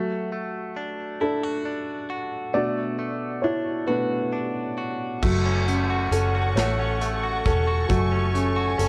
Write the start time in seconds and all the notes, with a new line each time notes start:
Already playing: F#3 A3 F#4
0.32 A3
0.76 D4
1.21 D4 E4 A4
1.43 F#4
1.65 D4
2.10 F#4
2.54 B2 A3 D4 F#4 D5
2.99 A3
3.42 D4 E4 C#5
3.87 B2 A3 D4 F#4 B4
4.33 D4
4.78 F#4
5.21 F#1 F#3 A3 A4 F#5 C#6, kick, crash
5.45 C#4
5.68 A3 C#4, closed hi-hat
5.90 F#4
6.11 F#1 C#4 A4, closed hi-hat
6.35 F#4
6.55 A1 A3 C#5, snare, closed hi-hat
6.79 C#4
7.01 A3, closed hi-hat
7.23 F#4
7.46 E1 C#4 A4, kick, closed hi-hat
7.67 F#4
7.89 F#1 F#3 A3 G#5, kick, closed hi-hat
8.12 C#4
8.34 A3 C#4, closed hi-hat
8.56 F#4
8.78 F#1 C#4 A4, closed hi-hat